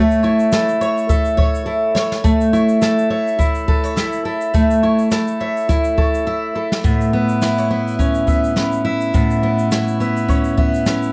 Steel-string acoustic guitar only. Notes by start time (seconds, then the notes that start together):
Already playing: A3 C#5
0.24 E4
0.53 A4
0.81 C#5
1.09 A4
1.37 C#5
1.66 A4
1.95 C#5
2.24 A3
2.53 E4
2.82 A4
3.10 C#5
3.39 E4
3.68 A4
3.97 E4
4.25 A4
4.55 A3
4.83 E4
5.12 A4
5.41 C#5
5.69 E4
5.98 A4
6.27 E4
6.56 A4
6.84 A2
7.13 B3
7.42 E4
7.70 B3
7.99 C#4
8.27 B3
8.56 C#4
8.85 E4
9.14 A2
9.43 B3
9.72 E4
10.00 B3
10.28 C#4
10.57 B3
10.86 C#4